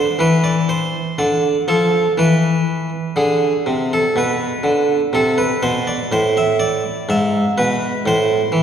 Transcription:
Already playing: C5
0.19 E3 B4
0.44 D5
0.69 C5
1.18 D3 D5
1.68 F3 A4
2.18 E3 B4
3.16 D3 G#4
3.66 C3
3.93 A4
4.16 B2 B4
4.63 D3
5.13 C3 A4
5.38 B4
5.63 B2 C5
5.87 D5
6.12 A2 C5
6.37 E5
6.60 D5
7.09 G#2 E5
7.58 B2 B4
8.06 A2 C5
8.52 E3

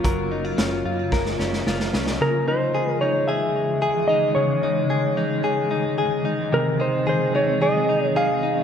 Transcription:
Already playing: C#3 F#3 A#3 C#4 F4
0.04 F#1 F#3 A#4, kick, closed hi-hat
0.32 D#4
0.45 F4
0.58 F#1 C#4, snare, closed hi-hat
0.85 F#2 F4
1.12 F#1 A#4, kick, snare
1.26 snare
1.39 F#1 C#4, snare
1.53 snare
1.66 F#1 F4, snare
1.80 snare
1.93 C2 C#4, snare
2.07 snare
2.20 C#3 D#3 E3 G#3 A#4
2.48 D#4 C5
2.75 G#4
3.01 D#4 C#5
3.28 G#4 E5
3.82 G#4
4.08 D#4 D#5
4.35 C#3 C#5
4.63 D#4
4.90 G#4
5.17 D#4
5.44 G#4
5.71 D#4
5.98 G#4
6.25 D#4
6.52 C3 F#3 G#3 C4 A#4
6.80 D#4 C5
7.07 G#4 C5
7.35 D#4 C#5
7.62 G#4 D#5
7.89 D#4
8.05 C#5
8.16 G#4 F5
8.43 D#4

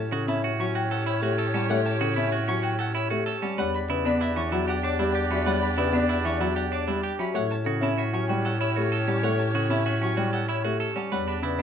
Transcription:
Already playing: A2 C#4 G4 C#5
0.12 C#3 F#4 A4
0.27 C#4 E4 E5 A5
0.44 F#4
0.60 F#3 C#4 F#5 C#6
0.75 F#4 G5
0.91 A4 F#5
1.06 E4 C#5 E6
1.22 A3 F#4 G4
1.38 A4 E6
1.54 G3 C#4 F#5 A5
1.70 A3 C#5 F#5
1.85 A5
2.01 C#3 F#4 A4
2.16 C#4 E4 E5 A5
2.32 F#4
2.48 F#3 C#4 F#5 C#6
2.63 F#4 G5
2.79 A4 F#5
2.95 E4 C#5 E6
3.10 A3 F#4 G4
3.26 A4 E6
3.42 G3 C#4 F#5 A5
3.58 E2 G3 D4 G4 B4 C#5 D5 F#5
3.74 B5
3.89 C#3 E4 B4
4.05 B3 D4 D5 B5
4.21 E4 E5
4.36 E3 C#4 E5 C#6
4.52 F#3 E4 F#5
4.68 G4 F#5
4.83 D4 C#5 D6
4.99 G3 E4 G4
5.15 G4 D6
5.31 F#3 C#4 E5 B5
5.46 G3 B4 C#5 F#5
5.62 B5
5.77 C#3 E4 B4
5.92 B3 D4 D5 B5
6.09 E4 E5
6.25 E3 C#4 E5 C#6
6.40 F#3 E4 F#5
6.56 G4 F#5
6.71 D4 C#5 D6
6.87 G3 E4 G4
7.03 G4 D6
7.19 F#3 C#4 E5 B5
7.34 A2 A3 C#4 G4 C#5 F#5
7.51 A5
7.65 C#3 F#4 A4
7.81 C#4 E4 E5 A5
7.98 F#4 E5
8.13 F#3 C#4 F#5 C#6
8.28 G3 F#4 G5
8.45 A4 F#5
8.59 E4 C#5 E6
8.76 A3 F#4 G4
8.92 A4 E6
9.07 G3 C#4 F#5 A5
9.23 A3 C#5 F#5
9.39 A5
9.54 C#3 F#4 A4
9.70 C#4 E4 E5 A5
9.86 F#4 E5
10.02 F#3 C#4 F#5 C#6
10.17 G3 F#4 G5
10.33 A4 F#5
10.49 E4 C#5 E6
10.64 A3 F#4 G4
10.80 A4 E6
10.96 G3 C#4 F#5 A5
11.12 E2 G3 D4 G4 B4 C#5 D5 F#5
11.27 D4 B5
11.42 C#3 E4 B4
11.58 B3 D4 D5 B5

